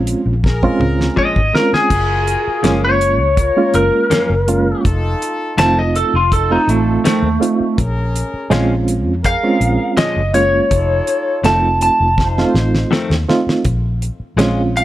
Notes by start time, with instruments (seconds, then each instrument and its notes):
Already playing: fingered electric bass A#1, reed electric piano G#3 C4 C#4 F4
0.07 closed hi-hat
0.26 fingered electric bass A#1
0.44 horn section G#4 A#4, kick, snare
0.63 reed electric piano G#3 C4 C#4 F4, kick
0.80 fingered electric bass C#2, mid tom
1.01 snare
1.16 clean electric guitar A#2 F3 G#3 C#4, lead electric guitar D#5, kick
1.36 fingered electric bass G#1, kick
1.54 reed electric piano G#3 C4 C#4 F4, lead electric guitar A#4, snare
1.73 lead electric guitar G#4, muted fingered electric bass stroke, snare
1.90 fingered electric bass F#1, horn section F4 F#4 A#4, kick, closed hi-hat, crash
2.27 closed hi-hat
2.47 muted fingered electric bass stroke
2.63 fingered electric bass F#1, clean electric guitar F#2 F3 A#3 C#4, reed electric piano G#3 A#3 C#4 F4, snare, closed hi-hat
2.85 lead electric guitar C#5
3.01 closed hi-hat
3.20 fingered electric bass C#2
3.37 horn section F4 A#4, kick, closed hi-hat
3.57 reed electric piano G#3 A#3 C#4 F4
3.74 fingered electric bass F#1, lead electric guitar A#4, closed hi-hat
4.10 clean electric guitar F#2 F3 A#3 C#4, muted fingered electric bass stroke, snare, closed hi-hat
4.30 fingered electric bass F#1
4.47 reed electric piano G#3 A#3 C#4 F4, closed hi-hat
4.84 fingered electric bass F1, horn section D#4 F4 A4, kick, closed hi-hat
5.22 closed hi-hat
5.58 fingered electric bass F1, clean electric guitar F2 D#3 A3 C4, reed electric piano A3 C4 D#4 F4, lead electric guitar A5, snare, closed hi-hat
5.79 lead electric guitar D#5
5.96 lead electric guitar A4, closed hi-hat
6.14 fingered electric bass F1, lead electric guitar F4
6.31 horn section D#4 F4 A4, lead electric guitar A4, kick, closed hi-hat
6.50 reed electric piano A3 C4 D#4 F4, lead electric guitar D#4
6.68 fingered electric bass A1, lead electric guitar A3, closed hi-hat
7.04 clean electric guitar F2 D#3 A3 C4, lead electric guitar A3, snare, closed hi-hat
7.22 fingered electric bass D#2
7.40 reed electric piano A3 C4 D#4 F4, closed hi-hat
7.60 muted fingered electric bass stroke
7.78 fingered electric bass A#1, horn section C#4 G#4 A#4, kick, closed hi-hat
8.16 closed hi-hat
8.34 muted fingered electric bass stroke
8.50 fingered electric bass A#1, clean electric guitar A#2 F3 G#3 C#4, reed electric piano G#3 C4 C#4 F4, snare, closed hi-hat
8.88 closed hi-hat
9.06 fingered electric bass F2
9.23 horn section G#4 A#4, lead electric guitar F5, kick, closed hi-hat
9.43 reed electric piano G#3 C4 C#4 F4
9.61 fingered electric bass A#1, closed hi-hat
9.97 clean electric guitar A#2 F3 G#3 C#4, lead electric guitar D#5, muted fingered electric bass stroke, snare, closed hi-hat
10.16 fingered electric bass F#1
10.34 reed electric piano G#3 A#3 C#4 F4, lead electric guitar C#5, closed hi-hat
10.69 fingered electric bass F1, horn section D#4 F4 A4, kick, closed hi-hat
11.07 closed hi-hat
11.44 fingered electric bass F1, clean electric guitar F2 D#3 A3 C4, reed electric piano A3 C4 D#4 F4, lead electric guitar A5, snare, closed hi-hat
11.81 lead electric guitar A5, closed hi-hat
12.00 fingered electric bass F1
12.17 horn section D#4 F4 C5, kick, snare
12.38 reed electric piano A3 C4 D#4 F4, snare
12.54 fingered electric bass A1, snare
12.75 snare
12.91 clean electric guitar F2 D#3 A3 C4, snare
13.10 fingered electric bass D#2, snare
13.28 reed electric piano A3 C4 D#4 F4, snare
13.47 muted fingered electric bass stroke, snare
13.65 fingered electric bass A#1, kick, closed hi-hat
14.02 closed hi-hat
14.20 muted fingered electric bass stroke
14.37 fingered electric bass A#1, clean electric guitar A#2 G#3 C#4 F4, reed electric piano G#3 C4 C#4 F4, snare, closed hi-hat
14.77 lead electric guitar F5, closed hi-hat